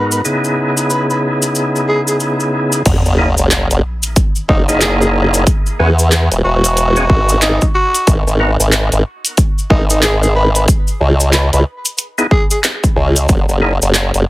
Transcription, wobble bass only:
0, 0, Header, 1, 2, 480
1, 0, Start_track
1, 0, Tempo, 652174
1, 183, Time_signature, 4, 2, 24, 8
1, 10523, End_track
2, 0, Start_track
2, 0, Title_t, "Wobble bass"
2, 0, Program_c, 0, 39
2, 2104, Note_on_c, 0, 30, 96
2, 2226, Note_off_c, 0, 30, 0
2, 2250, Note_on_c, 0, 30, 95
2, 2466, Note_off_c, 0, 30, 0
2, 2488, Note_on_c, 0, 30, 96
2, 2705, Note_off_c, 0, 30, 0
2, 2730, Note_on_c, 0, 30, 101
2, 2808, Note_off_c, 0, 30, 0
2, 3304, Note_on_c, 0, 30, 100
2, 4008, Note_off_c, 0, 30, 0
2, 4265, Note_on_c, 0, 40, 98
2, 4626, Note_off_c, 0, 40, 0
2, 4648, Note_on_c, 0, 28, 100
2, 4727, Note_off_c, 0, 28, 0
2, 4742, Note_on_c, 0, 28, 104
2, 5207, Note_off_c, 0, 28, 0
2, 5223, Note_on_c, 0, 32, 97
2, 5585, Note_off_c, 0, 32, 0
2, 5942, Note_on_c, 0, 32, 96
2, 6065, Note_off_c, 0, 32, 0
2, 6086, Note_on_c, 0, 32, 98
2, 6304, Note_off_c, 0, 32, 0
2, 6327, Note_on_c, 0, 32, 97
2, 6544, Note_off_c, 0, 32, 0
2, 6567, Note_on_c, 0, 32, 95
2, 6647, Note_off_c, 0, 32, 0
2, 7141, Note_on_c, 0, 32, 102
2, 7847, Note_off_c, 0, 32, 0
2, 8100, Note_on_c, 0, 37, 98
2, 8464, Note_off_c, 0, 37, 0
2, 8486, Note_on_c, 0, 37, 96
2, 8566, Note_off_c, 0, 37, 0
2, 9541, Note_on_c, 0, 37, 96
2, 9766, Note_off_c, 0, 37, 0
2, 9781, Note_on_c, 0, 30, 98
2, 9904, Note_off_c, 0, 30, 0
2, 9928, Note_on_c, 0, 30, 100
2, 10145, Note_off_c, 0, 30, 0
2, 10168, Note_on_c, 0, 30, 100
2, 10385, Note_off_c, 0, 30, 0
2, 10408, Note_on_c, 0, 30, 99
2, 10487, Note_off_c, 0, 30, 0
2, 10523, End_track
0, 0, End_of_file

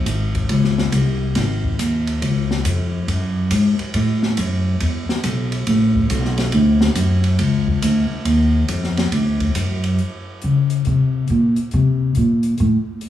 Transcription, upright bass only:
0, 0, Header, 1, 3, 480
1, 0, Start_track
1, 0, Tempo, 431965
1, 1507, Time_signature, 4, 2, 24, 8
1, 14546, End_track
2, 0, Start_track
2, 0, Title_t, "Upright bass"
2, 0, Program_c, 0, 32
2, 66, Note_on_c, 0, 32, 86
2, 532, Note_off_c, 0, 32, 0
2, 545, Note_on_c, 0, 37, 77
2, 1012, Note_off_c, 0, 37, 0
2, 1026, Note_on_c, 0, 36, 91
2, 1491, Note_off_c, 0, 36, 0
2, 1508, Note_on_c, 0, 32, 85
2, 1972, Note_off_c, 0, 32, 0
2, 1987, Note_on_c, 0, 39, 82
2, 2451, Note_off_c, 0, 39, 0
2, 2464, Note_on_c, 0, 37, 83
2, 2929, Note_off_c, 0, 37, 0
2, 2940, Note_on_c, 0, 41, 88
2, 3407, Note_off_c, 0, 41, 0
2, 3419, Note_on_c, 0, 42, 84
2, 3886, Note_off_c, 0, 42, 0
2, 3899, Note_on_c, 0, 44, 83
2, 4193, Note_off_c, 0, 44, 0
2, 4380, Note_on_c, 0, 45, 81
2, 4846, Note_off_c, 0, 45, 0
2, 4863, Note_on_c, 0, 42, 89
2, 5327, Note_off_c, 0, 42, 0
2, 5346, Note_on_c, 0, 40, 78
2, 5636, Note_off_c, 0, 40, 0
2, 5819, Note_on_c, 0, 35, 89
2, 6285, Note_off_c, 0, 35, 0
2, 6301, Note_on_c, 0, 33, 88
2, 6765, Note_off_c, 0, 33, 0
2, 6781, Note_on_c, 0, 35, 93
2, 7245, Note_off_c, 0, 35, 0
2, 7256, Note_on_c, 0, 38, 89
2, 7722, Note_off_c, 0, 38, 0
2, 7729, Note_on_c, 0, 42, 90
2, 8199, Note_off_c, 0, 42, 0
2, 8208, Note_on_c, 0, 37, 80
2, 8678, Note_off_c, 0, 37, 0
2, 8693, Note_on_c, 0, 38, 92
2, 8988, Note_off_c, 0, 38, 0
2, 9168, Note_on_c, 0, 39, 86
2, 9638, Note_off_c, 0, 39, 0
2, 9652, Note_on_c, 0, 41, 86
2, 10120, Note_off_c, 0, 41, 0
2, 10132, Note_on_c, 0, 38, 79
2, 10601, Note_off_c, 0, 38, 0
2, 10614, Note_on_c, 0, 42, 88
2, 11082, Note_off_c, 0, 42, 0
2, 11598, Note_on_c, 0, 49, 67
2, 12037, Note_off_c, 0, 49, 0
2, 12075, Note_on_c, 0, 48, 68
2, 12515, Note_off_c, 0, 48, 0
2, 12556, Note_on_c, 0, 46, 70
2, 12855, Note_off_c, 0, 46, 0
2, 13041, Note_on_c, 0, 48, 83
2, 13480, Note_off_c, 0, 48, 0
2, 13520, Note_on_c, 0, 46, 69
2, 13960, Note_off_c, 0, 46, 0
2, 14000, Note_on_c, 0, 45, 80
2, 14185, Note_off_c, 0, 45, 0
2, 14546, End_track
3, 0, Start_track
3, 0, Title_t, "Muted upright bass strokes"
3, 4219, Note_on_c, 9, 29, 41
3, 4330, Note_off_c, 9, 29, 0
3, 5661, Note_on_c, 9, 29, 39
3, 5772, Note_off_c, 9, 29, 0
3, 9009, Note_on_c, 9, 29, 39
3, 9121, Note_off_c, 9, 29, 0
3, 14546, End_track
0, 0, End_of_file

